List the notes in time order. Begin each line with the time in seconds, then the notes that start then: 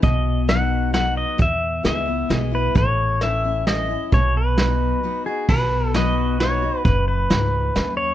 0.02 B1 B2 D#5, kick, closed hi-hat
0.48 F#3 B3 D#4 F#4 F#5, snare, closed hi-hat
0.93 F#3 B3 D#4 F#4 F#5, snare, closed hi-hat
1.17 D#5
1.38 E2 E5, kick, closed hi-hat
1.83 C#2 E3 G#3 B3 E4 E5, snare, closed hi-hat
2.06 B3 E4
2.29 B1 E3 G#3 B3 E4, snare, closed hi-hat
2.35 D#5
2.51 B3 E4 B4
2.75 A1 A2 C#5, kick, closed hi-hat
3.21 E3 A3 C#4 E4 E5, snare, closed hi-hat
3.44 C#4 E4
3.67 E3 A3 C#4 E4 D#5, snare, closed hi-hat
3.89 C#4 E4
4.12 B1 B2 C#5, kick, closed hi-hat
4.37 B4
4.58 F#3 B3 D#4 F#4, snare, closed hi-hat
5.03 F#3 B3 D#4 F#4
5.26 D#4 F#4 G#4
5.48 B1 B2 B4, kick, crash
5.94 F#3 B3 D#4 F#4 B4 D#5, snare, closed hi-hat
6.40 F#3 B3 D#4 F#4 C#5, snare, closed hi-hat
6.62 D#4 F#4
6.85 F#1 F#2 B4, kick, closed hi-hat
7.08 B4
7.30 C#2 G#2, snare, closed hi-hat
7.75 D#2 F#2, snare, closed hi-hat
7.97 C#5